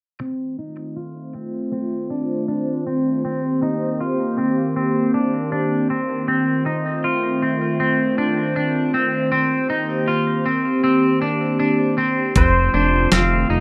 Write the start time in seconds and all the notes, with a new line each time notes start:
0.21 D#3 A3 C4 F4 C5
0.59 D#4
0.96 F4
1.35 C4
1.72 C4
2.10 D4
2.48 D4
2.87 C4
3.25 A#3 C4 G4
3.62 D#4
4.01 F4
4.38 C4
4.76 C4
5.14 D4
5.52 D4
5.90 C4
6.28 A3 C4 F4 C5
6.66 D#4
7.04 F4
7.42 C4
7.80 C4
8.18 D4
8.56 D4
8.94 C4
9.32 A#3 C4 G4
9.70 D#4
10.08 F4
10.46 C4
10.84 C4
11.22 D4
11.60 D4
11.98 C4
12.36 F1 D#3 F3 A3 C4 F4 C5, kick, closed hi-hat
12.74 F1 D4 C5
13.12 F1 C4 F5, snare, closed hi-hat
13.50 F1 D#4